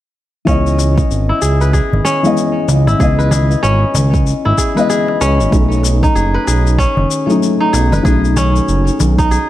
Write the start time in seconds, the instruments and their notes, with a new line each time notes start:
0.45 analog synth bass C#2, felt piano E3 G#3 B3 D#5, kora C#4, kick, shaker
0.66 shaker
0.79 darbuka ka, shaker
0.98 kick, shaker
1.11 analog synth bass G#1, shaker
1.29 kora E4
1.42 analog synth bass C#2, kora G#4, shaker
1.61 kora B4, shaker
1.73 kora G#4, kick, darbuka tek, shaker
1.93 analog synth bass G#1, darbuka dum
2.05 kora C#4, shaker
2.23 felt piano E3 G#3 B3 D#5, shaker
2.37 shaker
2.68 analog synth bass C#2, darbuka tek, shaker
2.87 analog synth bass G#1, kora E4, darbuka ka, darbuka dum, shaker
2.98 analog synth bass C#2, felt piano E3 G#3 B3, kora G#4, kick, shaker
3.02 felt piano D#5
3.19 kora B4, shaker
3.31 kora G#4, darbuka ka, darbuka tek, darbuka dum, shaker
3.51 shaker
3.63 analog synth bass G#1, kora C#4, shaker
3.95 analog synth bass C#2, darbuka tek, darbuka dum, shaker
4.14 kick, shaker
4.27 shaker
4.45 analog synth bass G#1, kora E4, darbuka ka
4.58 kora G#4, kick, shaker
4.75 felt piano E3 G#3 B3, kora B4, shaker
4.79 felt piano D#5
4.90 kora G#4, shaker
5.08 darbuka ka
5.21 analog synth bass C#2, kora C#4, darbuka tek, shaker
5.40 analog synth bass G#1, shaker
5.50 analog synth bass B1, felt piano F#3 A3 C#4 D#4, kick, shaker
5.72 shaker
5.83 darbuka ka, shaker
6.03 kora D#4, kick, shaker
6.15 analog synth bass F#1, kora G#4, shaker
6.34 kora B4
6.47 analog synth bass B1, kora G#4, shaker
6.67 shaker
6.79 kora C#4, kick, darbuka tek, shaker
6.97 analog synth bass F#1, darbuka dum
7.11 shaker
7.27 felt piano F#3 A3 C#4 D#4, shaker
7.43 shaker
7.60 kora D#4
7.73 analog synth bass B1, kora G#4, darbuka tek, shaker
7.92 analog synth bass F#1, kora B4, darbuka ka, darbuka dum, shaker
8.03 analog synth bass B1, felt piano F#3 A3 C#4 D#4, kora G#4, kick, shaker
8.25 shaker
8.37 kora C#4, darbuka ka, darbuka tek, darbuka dum, shaker
8.56 shaker
8.68 analog synth bass F#1, shaker
8.87 shaker
9.00 analog synth bass B1, darbuka tek, darbuka dum, shaker
9.18 kora D#4, kick, shaker
9.31 kora G#4, shaker